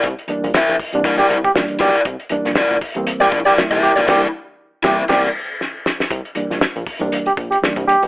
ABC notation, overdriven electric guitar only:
X:1
M:4/4
L:1/16
Q:"Swing 16ths" 1/4=119
K:Cmix
V:1 name="Overdriven electric guitar"
z4 [EBe] z3 [EBd] [EBd] z4 [EBd] z | z4 [EBd] z4 [EBd] z [EBd] z [EBe]2 [EBd] | [EBd]2 z4 [EBe]2 [EBd]2 z6 | z16 |]